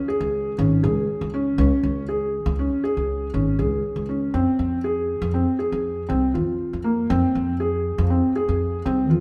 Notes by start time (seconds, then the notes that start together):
0.08 G#4
0.21 C#2
0.58 G#1 C#4
0.83 C#2 G#4
1.21 C#2
1.34 C#4
1.58 C#2 C#4
1.83 C#2
2.09 G#4
2.46 C#2
2.59 C#4
2.84 G#4
2.97 C#2
3.34 G#1 C#4
3.59 C#2 G#4
3.96 C#2
4.09 C#4
4.34 F2 C4
4.59 F2
4.84 G#4
5.22 F2
5.34 C4
5.59 G#4
5.72 F2
6.09 C2 C4
6.34 F2 F4
6.73 F2
6.84 A#3
7.10 F2 C4
7.35 F2
7.60 G#4
7.98 F2
8.10 C4
8.36 G#4
8.49 F2
8.85 C2 C4
9.10 F2 F4